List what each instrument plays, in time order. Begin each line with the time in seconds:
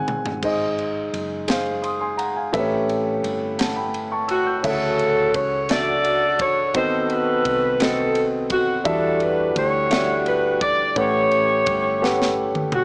Already playing: grand piano D#3 G#3 C4 F#5 G#5
0.08 mid tom
0.26 floor tom
0.43 fingered electric bass G#1, grand piano G#2 G#4 C5 D#5, kick, crash
0.79 ride
1.13 fingered electric bass F#1, ride
1.48 grand piano G#4 C5 F5, snare, ride
1.82 grand piano C6 D#6, ride
2.01 grand piano G#5 C6
2.17 grand piano F#5 A#5, ride
2.36 grand piano F5 G#5
2.52 fingered electric bass A1, grand piano A2 C4 G4 A4 B4 E5, kick, ride
2.59 grand piano C#4
2.89 ride
3.23 fingered electric bass G1, ride
3.59 grand piano F#5 A5, snare, ride
3.76 grand piano G5 B5
3.94 ride
4.12 grand piano A5 C#6
4.28 saxophone section F#4, grand piano E6, ride
4.46 grand piano E6 G6
4.63 fingered electric bass D2, grand piano C#3 C#4 E4 A4 C#5 E5, saxophone section C#4 F#4 A4, kick, crash
4.70 grand piano F#4
4.99 ride
5.34 fingered electric bass C#2, saxophone section C#5, kick, ride
5.69 grand piano D4 F#4 A4 D5 E5, saxophone section F#4 A4 D5, snare, ride
6.05 ride
6.39 saxophone section C#5, kick, ride
6.74 fingered electric bass D#2, grand piano D#3 B3 C4 F#4 A4 D#5, saxophone section F#4 A4 C5, kick, ride
7.10 saxophone section F#4 B4, ride
7.45 fingered electric bass C2, kick, ride
7.80 grand piano C4 F#4 A4 B4 D#5, saxophone section A4, snare, ride
8.15 ride
8.50 saxophone section F#4, kick, ride
8.84 fingered electric bass E2, grand piano E3 G3 D4 F#4 A4 E5, saxophone section D4 F#4 A4, kick, ride
9.20 saxophone section B4, ride
9.56 fingered electric bass D2, saxophone section F#4 G4 C#5, kick, ride
9.90 grand piano G3 D4 A4 E5 F#5, snare, ride
10.26 saxophone section B4, ride
10.61 saxophone section D5, kick, ride
10.96 fingered electric bass A1, grand piano A2 C#4 G4 A4 B4 F#5, saxophone section E4 G4 C#5, kick, ride
11.31 ride
11.66 fingered electric bass G1, kick, ride
12.01 grand piano C#4 G4 A4 B4 F#5, snare
12.22 snare
12.55 mid tom
12.72 saxophone section F#4, mid tom